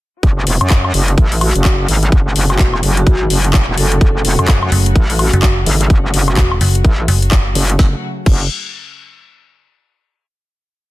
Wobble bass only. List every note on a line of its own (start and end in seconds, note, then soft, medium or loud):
0.23 0.45 F#1 loud
0.47 0.59 E1 loud
0.61 0.93 F#2 loud
0.94 1.16 F#1 loud
1.18 1.53 A1 loud
1.55 1.87 F#1 medium
1.88 2.11 G#1 loud
2.12 2.34 F#1 loud
2.36 2.58 F#1 loud
2.59 2.81 E1 loud
2.83 3.05 F#1 loud
3.07 3.29 G#1 loud
3.30 3.66 F#1 loud
3.68 3.76 E1 loud
3.78 4.00 F#1 loud
4.01 4.23 F#1 loud
4.25 4.37 E1 loud
4.39 4.70 F#2 loud
4.96 5.31 A1 loud
5.66 5.89 G#1 loud
5.90 6.12 F#1 loud
6.14 6.36 F#1 loud
6.85 7.07 A1 loud
7.55 7.78 F#1 loud
7.79 7.94 F#1 loud
8.26 8.48 F#1 loud